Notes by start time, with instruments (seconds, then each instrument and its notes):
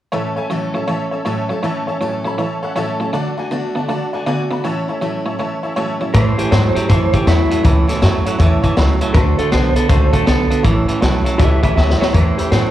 0.12 steel-string acoustic guitar A2 E3 A3 C#4 A4, clean electric guitar A2 E3, honky-tonk piano C#5 E5 A5
0.36 steel-string acoustic guitar A3 C#4 A4, honky-tonk piano C#5 E5 G#5
0.50 clean electric guitar A2 F#3, steel-string acoustic guitar A2 E3 A3 C#4 A4, honky-tonk piano C#5 E5 A5
0.74 clean electric guitar A2 F#3, steel-string acoustic guitar A3 C#4 A4, honky-tonk piano C#5 E5 A5
0.87 clean electric guitar A2 E3, steel-string acoustic guitar E3 A3 C#4 A4, honky-tonk piano C#5 E5 A5
1.11 steel-string acoustic guitar A3 C#4 A4, honky-tonk piano C#5 E5 A5
1.25 clean electric guitar A2 F#3, steel-string acoustic guitar A2 E3 A3 C#4 A4, honky-tonk piano C#5 E5 A5
1.49 clean electric guitar A2 F#3, steel-string acoustic guitar A3 C#4 A4, honky-tonk piano C#5 E5 A5
1.63 clean electric guitar A2 E3, steel-string acoustic guitar A2 E3 A3 C#4 A4, honky-tonk piano C#5 E5 A5
1.87 steel-string acoustic guitar A3 C#4 A4, honky-tonk piano C#5 E5 A5
2.01 clean electric guitar A2 F#3, steel-string acoustic guitar A2 E3 A3 C#4 A4, honky-tonk piano C#5 E5 A5
2.25 clean electric guitar A2 F#3, steel-string acoustic guitar A3 C#4 A4, honky-tonk piano C#5 E5 B5
2.38 clean electric guitar A2 E3, steel-string acoustic guitar E3 A3 C#4 A4, honky-tonk piano C#5 E5 A5
2.63 steel-string acoustic guitar A3 C#4 A4, honky-tonk piano C#5 E5 F#5
2.76 clean electric guitar A2 F#3, steel-string acoustic guitar A2 E3 A3 C#4 A4, honky-tonk piano C#5 E5 A5
3.00 clean electric guitar A2 F#3, steel-string acoustic guitar A3 C#4 A4, honky-tonk piano C#5 E5 A5
3.13 clean electric guitar D3 A3, steel-string acoustic guitar D3 A3 D4 F#4, honky-tonk piano D5 F#5 A5
3.37 steel-string acoustic guitar A3 D4 F#4, honky-tonk piano D5 F#5 G#5
3.51 steel-string acoustic guitar D3 A3 D4 F#4, clean electric guitar D3 B3, honky-tonk piano D5 F#5 A5
3.75 clean electric guitar D3 B3, steel-string acoustic guitar A3 D4 F#4, honky-tonk piano D5 F#5 A5
3.89 clean electric guitar D3 A3, steel-string acoustic guitar D3 A3 D4 F#4, honky-tonk piano D5 F#5 A5
4.13 steel-string acoustic guitar A3 D4 F#4, honky-tonk piano D5 F#5 G#5
4.26 clean electric guitar D3 B3, steel-string acoustic guitar D3 A3 D4 F#4, honky-tonk piano D5 F#5 G#5
4.50 clean electric guitar D3 B3, steel-string acoustic guitar A3 D4 F#4, honky-tonk piano D5 F#5 B5
4.64 clean electric guitar A2 E3, steel-string acoustic guitar A2 E3 A3 C#4 E4, honky-tonk piano C#5 E5 A5
4.88 steel-string acoustic guitar A3 C#4 E4, honky-tonk piano C#5 E5 A5
5.01 clean electric guitar A2 F#3, steel-string acoustic guitar A2 E3 A3 C#4 E4, honky-tonk piano C#5 E5 A5
5.26 clean electric guitar A2 F#3, steel-string acoustic guitar A3 C#4 E4, honky-tonk piano C#5 E5 A5
5.39 clean electric guitar A2 E3, steel-string acoustic guitar E3 A3 C#4 E4, honky-tonk piano C#5 E5 A5
5.63 steel-string acoustic guitar A3 C#4 E4, honky-tonk piano C#5 E5 A5
5.76 steel-string acoustic guitar A2 E3 A3 C#4 E4, clean electric guitar A2 F#3, honky-tonk piano C#5 E5 A5
6.00 clean electric guitar A2 F#3, steel-string acoustic guitar A3 C#4 E4, honky-tonk piano C#5 E5 A5
6.14 steel-string acoustic guitar A2 E3 A3 C#4 E4, clean electric guitar A2 E3 C5, upright bass A2, honky-tonk piano C#5 E5 A5, kick, snare, closed hi-hat
6.38 clean electric guitar A2 E3 G4, steel-string acoustic guitar A3 C#4 E4, honky-tonk piano C#5 E5 A5, muted upright bass stroke, closed hi-hat
6.51 upright bass G#2, clean electric guitar A2 F#3 C5, steel-string acoustic guitar E3 A3 C#4, honky-tonk piano C#5 E5 A5, snare, closed hi-hat
6.75 clean electric guitar A2 F#3 G4, steel-string acoustic guitar A3 C#4 E4, honky-tonk piano C#5 E5 A5, muted upright bass stroke, closed hi-hat
6.89 upright bass F#2, steel-string acoustic guitar A2 E3 A3 C#4 E4, clean electric guitar A2 E3 C5, honky-tonk piano C#5 E5 A5, kick, snare, closed hi-hat
7.12 clean electric guitar A2 E3 G4, steel-string acoustic guitar A3 C#4 E4, honky-tonk piano C#5 E5 A5, muted upright bass stroke, kick, closed hi-hat
7.26 upright bass E2, clean electric guitar A2 F#3 E4, steel-string acoustic guitar E3 A3 C#4 E4, honky-tonk piano C#5 E5 A5, snare, closed hi-hat
7.50 clean electric guitar A2 F#3, steel-string acoustic guitar A3 C#4 E4, honky-tonk piano C#5 E5 A5, muted upright bass stroke, closed hi-hat
7.63 upright bass C#2, steel-string acoustic guitar A2 E3 A3 C#4 E4, clean electric guitar A2 E3, honky-tonk piano C#5 E5 B5, kick, closed hi-hat
7.87 clean electric guitar A2 E3, steel-string acoustic guitar A3 C#4 E4, honky-tonk piano C#5 E5 A5, muted upright bass stroke, snare, closed hi-hat
8.01 upright bass F#2, clean electric guitar A2 F#3, steel-string acoustic guitar E3 A3 C#4 E4, honky-tonk piano C#5 E5 A5, snare, closed hi-hat
8.25 clean electric guitar A2 F#3, steel-string acoustic guitar A3 C#4 E4, honky-tonk piano C#5 E5 F#5, muted upright bass stroke, closed hi-hat
8.38 upright bass E2, steel-string acoustic guitar A2 E3 A3 C#4 E4, clean electric guitar A2 E3, honky-tonk piano C#5 E5 A5, kick, closed hi-hat
8.62 clean electric guitar A2 E3, steel-string acoustic guitar A3 C#4 E4, honky-tonk piano C#5 E5 A5, kick, closed hi-hat
8.76 upright bass C#2, clean electric guitar A2 F#3, steel-string acoustic guitar E3 A3 C#4 E4, honky-tonk piano C#5 E5 B5, snare, closed hi-hat
9.01 clean electric guitar A2 F#3, steel-string acoustic guitar A3 C#4 E4, honky-tonk piano C#5 E5 A5, muted upright bass stroke, closed hi-hat
9.14 upright bass D2, clean electric guitar D3 A3 C5, steel-string acoustic guitar D3 A3 D4 F#4, honky-tonk piano D5 F#5 A5, kick, snare, closed hi-hat
9.38 clean electric guitar D3 A3 A4, steel-string acoustic guitar A3 D4 F#4, honky-tonk piano D5 F#5 A5, muted upright bass stroke, closed hi-hat
9.51 upright bass B1, steel-string acoustic guitar D3 A3 D4 F#4, clean electric guitar D3 B3 C5, honky-tonk piano D5 F#5 A5, snare, closed hi-hat
9.76 clean electric guitar D3 B3 A4, steel-string acoustic guitar A3 D4 F#4, honky-tonk piano D5 F#5 A5, muted upright bass stroke, closed hi-hat
9.89 upright bass C#2, clean electric guitar D3 A3 C5, steel-string acoustic guitar D3 A3 D4 F#4, honky-tonk piano D5 F#5 G#5, kick, closed hi-hat
10.12 clean electric guitar D3 A3 A4, steel-string acoustic guitar A3 D4 F#4, honky-tonk piano D5 F#5 A5, kick, closed hi-hat
10.26 upright bass B1, steel-string acoustic guitar D3 A3 D4 F#4, clean electric guitar D3 B3 A4, honky-tonk piano D5 F#5 A5, snare, closed hi-hat
10.50 clean electric guitar D3 B3, steel-string acoustic guitar A3 D4 F#4, honky-tonk piano D5 F#5 A5, muted upright bass stroke, closed hi-hat
10.63 upright bass A1, steel-string acoustic guitar A2 E3 A3 C#4 E4, clean electric guitar A2 E3, honky-tonk piano C#5 E5 A5, kick, closed hi-hat
10.87 clean electric guitar A2 E3, steel-string acoustic guitar A3 C#4 E4, honky-tonk piano C#5 E5 A5, muted upright bass stroke, closed hi-hat
11.01 upright bass B1, clean electric guitar A2 F#3, steel-string acoustic guitar E3 A3 C#4 E4, honky-tonk piano C#5 E5 A5, snare, closed hi-hat
11.24 clean electric guitar A2 F#3, steel-string acoustic guitar A3 C#4 E4, honky-tonk piano C#5 E5 A5, muted upright bass stroke, closed hi-hat
11.38 upright bass C#2, clean electric guitar A2 E3 G4 E5, steel-string acoustic guitar A2 E3 A3 C#4 E4, honky-tonk piano C#5 E5 A5, kick, snare, closed hi-hat
11.62 clean electric guitar A2 E3 G4 E5, steel-string acoustic guitar A3 C#4 E4, honky-tonk piano C#5 E5 B5, kick, closed hi-hat
11.75 upright bass D2, clean electric guitar A2 F#3 G4 E5, steel-string acoustic guitar E3 A3 C#4 E4, honky-tonk piano C#5 E5 G#5, snare
11.90 snare
12.00 clean electric guitar A2 F#3 E4 C#5, steel-string acoustic guitar A3 C#4 E4, honky-tonk piano C#5 E5 B5, snare
12.13 upright bass E2, steel-string acoustic guitar A2 E3 A3 C#4 E4, clean electric guitar A2 E3 C5, honky-tonk piano C#5 E5 A5, kick, closed hi-hat
12.38 clean electric guitar A2 E3 G4, steel-string acoustic guitar A3 C#4 E4, honky-tonk piano C#5 E5 B5, muted upright bass stroke, closed hi-hat
12.51 clean electric guitar A2 F#3 C5, upright bass A2, steel-string acoustic guitar E3 A3 C#4 E4, honky-tonk piano C#5 E5 A5, snare, closed hi-hat